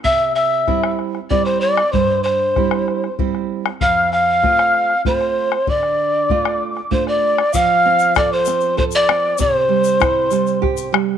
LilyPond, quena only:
\new Staff \with { instrumentName = "Quena" } { \time 3/4 \key f \major \tempo 4 = 96 e'''8 e'''4 r8 d'''16 c'''16 d'''8 | c'''8 c'''4. r4 | f'''8 f'''4. c'''4 | d'''2 c'''16 d'''8. |
f'''4 d'''16 c'''8. c'''16 d'''8. | c'''2~ c'''8 r8 | }